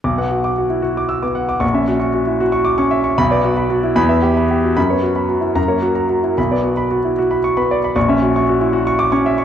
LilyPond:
<<
  \new Staff \with { instrumentName = "Grand piano" } { \time 6/8 \key b \minor \tempo 4. = 76 << { r2 e'''16 r8. | r2 d'''16 r8. | b''8 r4 b''8 r4 | b''8 r4 ais''8 r4 |
r2 cis'''16 r8. | r2 d'''16 r8. | } \\ { d'''16 fis''16 fis'16 d'''16 fis'16 e'16 fis'16 d'''8 d'''16 fis''16 d'''16 | cis'''16 e''16 fis'16 cis'''16 fis'16 e'16 fis'16 cis'''8 cis'''16 e''16 cis'''16 | r16 d''16 fis'16 b''16 fis'16 e'16 r16 e''16 g'16 b''16 g'16 fis'16 | r16 cis''16 fis'16 b''16 fis'16 e'16 r16 cis''16 fis'16 ais''16 fis'16 e'16 |
b''16 d''16 fis'16 b''16 fis'16 e'16 fis'16 b''8 b''16 d''16 b''16 | cis'''16 e''16 fis'16 cis'''16 fis'16 e'16 fis'16 cis'''8 cis'''16 e''16 cis'''16 | } >> }
  \new Staff \with { instrumentName = "Grand piano" } { \time 6/8 \key b \minor b,,16 b8 r4. b8 r16 | ais,,16 cis'8 r4. cis'8 r16 | b,,16 b8 r8. e,16 b8 r8. | fis,16 b8 r8. fis,16 ais8 r8. |
b,,16 b8 r4. b8 r16 | ais,,16 cis'8 r4. cis'8 r16 | }
>>